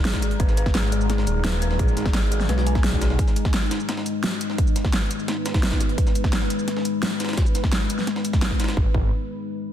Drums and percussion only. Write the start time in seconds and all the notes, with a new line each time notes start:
0.05 snare, closed hi-hat
0.14 kick, snare, closed hi-hat
0.22 snare, closed hi-hat, shaker
0.31 closed hi-hat
0.40 kick, closed hi-hat
0.49 snare, shaker
0.57 closed hi-hat, shaker
0.66 kick, snare
0.75 snare, closed hi-hat
0.83 snare
0.92 closed hi-hat, shaker
1.01 shaker
1.10 snare, closed hi-hat
1.18 snare
1.27 closed hi-hat, shaker
1.44 snare, closed hi-hat
1.53 snare
1.62 closed hi-hat, shaker
1.71 snare
1.79 kick, closed hi-hat
1.88 shaker
1.97 snare, closed hi-hat, shaker
2.06 kick, snare
2.14 snare, closed hi-hat
2.23 snare
2.32 closed hi-hat, shaker
2.40 snare, shaker
2.49 snare, closed hi-hat
2.58 snare
2.67 closed hi-hat, shaker
2.75 kick, snare
2.84 snare, closed hi-hat
2.93 kick
3.01 snare, closed hi-hat, shaker
3.10 snare
3.19 kick, closed hi-hat
3.28 snare, shaker
3.36 closed hi-hat, shaker
3.45 kick, snare
3.54 snare, closed hi-hat
3.62 snare
3.71 snare, closed hi-hat, shaker
3.80 shaker
3.89 snare, closed hi-hat
3.97 snare
4.06 closed hi-hat, shaker
4.24 snare, closed hi-hat
4.32 snare
4.41 closed hi-hat, shaker
4.50 snare
4.58 kick, closed hi-hat
4.67 shaker
4.76 snare, closed hi-hat, shaker
4.85 kick, snare
4.93 snare, closed hi-hat
5.02 snare
5.11 closed hi-hat, shaker
5.19 shaker
5.28 snare, closed hi-hat
5.46 snare, closed hi-hat, shaker
5.54 kick, snare, closed hi-hat
5.63 snare, closed hi-hat
5.72 kick, snare, closed hi-hat
5.81 snare, closed hi-hat, shaker
5.89 closed hi-hat
5.98 kick, closed hi-hat
6.07 snare, shaker
6.15 closed hi-hat, shaker
6.24 kick, snare
6.33 snare, closed hi-hat
6.42 snare
6.50 closed hi-hat, shaker
6.59 shaker
6.68 snare, closed hi-hat
6.77 snare
6.85 closed hi-hat, shaker
7.03 snare, closed hi-hat
7.11 snare
7.20 snare, closed hi-hat, shaker
7.25 snare, closed hi-hat
7.29 snare, closed hi-hat
7.33 snare, closed hi-hat
7.37 kick, snare, closed hi-hat
7.46 shaker
7.55 snare, closed hi-hat, shaker
7.64 kick, snare
7.72 snare, closed hi-hat
7.81 snare
7.90 closed hi-hat, shaker
7.99 snare, shaker
8.07 snare, closed hi-hat
8.16 snare
8.25 closed hi-hat, shaker
8.33 kick, snare, shaker
8.42 snare, closed hi-hat
8.51 kick, snare
8.60 snare, closed hi-hat, shaker
8.64 snare, closed hi-hat
8.68 snare, closed hi-hat
8.77 kick
8.94 kick